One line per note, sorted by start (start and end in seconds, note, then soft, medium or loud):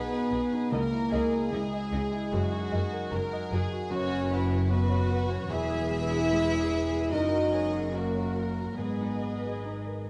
0.00 0.68 B1 medium
0.00 0.75 B2 medium
0.00 0.72 B3 loud
0.00 0.75 B3 soft
0.00 0.53 D#4 medium
0.00 0.75 F#4 soft
0.00 0.29 G#4 soft
0.00 0.33 G#4 soft
0.00 0.70 G#4 medium
0.00 0.13 B4 soft
0.00 0.30 B4 soft
0.00 0.71 B4 medium
0.00 1.51 G#5 soft
0.00 0.75 C#6 medium
0.11 0.44 B4 soft
0.11 1.31 D#5 medium
0.31 0.40 B1 medium
0.31 0.39 B2 medium
0.31 0.40 G#4 medium
0.31 0.64 G#4 medium
0.31 0.75 B4 soft
0.31 0.40 D#5 soft
0.51 3.94 C#4 medium
0.51 0.73 D#4 soft
0.71 2.28 C#2 medium
0.71 0.80 C#2 medium
0.71 2.35 C#3 medium
0.71 0.80 C#3 medium
0.71 1.53 A#3 loud
0.71 0.81 E4 medium
0.71 1.52 A#4 medium
0.71 1.12 A#4 medium
0.71 0.80 D#5 medium
0.92 1.24 E4 soft
1.11 1.21 C#2 medium
1.11 1.20 C#3 medium
1.11 2.11 E4 medium
1.11 1.21 E4 medium
1.11 2.32 G#4 medium
1.11 1.44 D#5 medium
1.11 1.22 D#5 medium
1.32 1.64 G#4 soft
1.32 1.91 D#5 medium
1.52 1.60 C#2 medium
1.52 1.60 C#3 medium
1.52 3.48 G#3 medium
1.52 1.85 E4 soft
1.52 1.62 E4 medium
1.52 3.48 G#4 medium
1.52 1.62 D#5 medium
1.52 2.36 G#5 medium
1.72 2.05 D#5 soft
1.72 2.36 E5 medium
1.92 2.00 C#2 medium
1.92 2.01 C#3 medium
1.92 2.00 E4 medium
1.92 2.25 G#4 medium
1.92 2.91 D#5 medium
1.92 2.01 D#5 medium
2.12 2.32 E4 medium
2.12 2.36 E4 medium
2.32 2.40 F#1 medium
2.32 3.88 F#2 medium
2.32 3.87 F#2 medium
2.32 2.41 F#2 medium
2.32 2.41 F#4 medium
2.32 3.14 F#4 medium
2.32 2.40 A#4 medium
2.52 3.94 D#4 medium
2.52 2.85 F#4 medium
2.72 2.81 F#1 medium
2.72 2.80 F#2 medium
2.72 3.69 F#4 medium
2.72 2.81 F#4 medium
2.72 2.81 A#4 medium
2.72 3.04 D#5 medium
2.92 3.25 A#4 medium
2.92 3.50 D#5 medium
3.11 3.20 F#1 medium
3.11 3.20 F#2 medium
3.11 3.20 F#4 medium
3.11 3.44 F#4 medium
3.11 3.20 A#4 medium
3.11 3.53 A#4 medium
3.11 3.94 A#5 medium
3.31 3.64 D#5 medium
3.31 4.88 F#5 medium
3.51 3.60 F#1 medium
3.51 3.60 F#2 medium
3.51 3.60 F#4 medium
3.51 3.92 G#4 medium
3.51 3.60 A#4 medium
3.51 3.83 A#4 medium
3.51 3.94 D#5 medium
3.70 4.27 F#4 medium
3.70 3.92 F#4 medium
3.89 5.47 F#1 medium
3.89 5.53 F#2 medium
3.89 5.47 F#2 medium
3.89 4.67 C#4 loud
3.89 4.67 F#4 medium
3.89 4.31 F#4 medium
3.89 4.67 B4 medium
3.89 4.67 C#5 medium
4.10 4.42 F#4 medium
4.28 5.29 F#4 medium
4.28 4.63 C#5 medium
4.33 4.71 E4 medium
4.49 4.83 B4 medium
4.49 5.08 C#5 medium
4.69 5.31 B3 medium
4.69 5.02 F#4 soft
4.69 5.49 F#4 medium
4.69 5.52 F#4 medium
4.69 5.29 B4 medium
4.69 5.50 B4 medium
4.69 6.30 B5 medium
4.89 5.22 C#5 medium
4.89 5.54 F#5 medium
5.09 5.42 B4 medium
5.09 5.53 C#5 medium
5.29 5.50 C#4 medium
5.29 5.50 F#4 medium
5.29 5.54 F#4 medium
5.29 5.51 C#5 medium
5.50 7.12 E1 medium
5.50 7.15 E2 medium
5.50 7.08 E2 medium
5.50 7.12 E2 medium
5.50 7.12 E4 loud
5.50 7.12 G#4 medium
5.50 5.91 G#4 medium
5.50 7.09 B4 medium
5.50 7.12 E5 loud
5.70 6.90 G#3 soft
5.70 6.03 G#4 medium
5.91 6.70 G#4 soft
5.91 7.10 G#4 medium
5.91 6.23 B4 medium
6.11 6.43 G#4 medium
6.11 7.15 B4 soft
6.31 6.64 G#3 soft
6.31 7.15 B5 medium
6.51 6.84 G#4 soft
6.51 7.16 G#5 medium
6.71 7.15 G#4 soft
6.71 7.04 B4 soft
6.91 7.15 G#3 medium
6.91 7.12 G#4 soft
7.11 8.78 F#1 medium
7.11 8.81 F#2 medium
7.11 8.78 F#2 medium
7.11 8.75 F#2 medium
7.11 7.94 D#4 loud
7.11 7.92 F#4 medium
7.11 7.92 A#4 medium
7.11 7.54 A#4 medium
7.11 7.92 D#5 medium
7.32 8.82 C#4 soft
7.32 7.65 F#4 soft
7.52 8.54 F#4 soft
7.52 7.94 G#4 medium
7.52 7.86 C#5 soft
7.73 8.06 A#4 soft
7.73 8.33 C#5 soft
7.92 8.76 A#3 medium
7.92 8.27 F#4 soft
7.92 8.35 F#4 medium
7.92 8.77 F#4 medium
7.92 8.79 A#4 medium
7.92 8.77 A#4 medium
7.92 9.63 A#5 soft
8.14 8.48 C#5 soft
8.14 8.82 F#5 soft
8.34 8.70 A#4 soft
8.34 8.79 A#4 medium
8.34 8.81 C#5 soft
8.56 8.81 F#4 soft
8.56 8.78 F#4 soft
8.77 10.10 G#1 soft
8.77 10.10 G#2 soft
8.77 9.64 B3 medium
8.77 10.08 G#4 soft
8.77 9.65 B4 soft
8.77 10.10 B4 soft
8.77 10.10 D#5 soft
8.99 10.10 G#3 soft
8.99 9.35 D#4 soft
9.22 10.10 D#4 soft
9.22 9.56 B4 soft
9.43 10.07 G#4 soft
9.43 9.78 G#4 soft
9.65 10.00 D#4 soft
9.65 10.10 A#5 soft
9.86 10.10 A#4 soft
9.86 10.10 D#5 soft